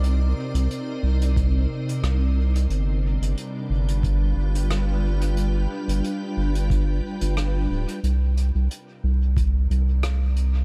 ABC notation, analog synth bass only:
X:1
M:4/4
L:1/16
Q:"Swing 16ths" 1/4=90
K:Cm
V:1 name="Analog synth bass" clef=bass
C,,2 z C,, z2 C,,4 z2 C,,4 | G,,,3 G,,, z2 G,,,4 G,,,6- | G,,,2 z G,,, z2 G,,,4 z G,,,3 D,,, z | C,,3 C,, z2 C,,4 C,,6 |]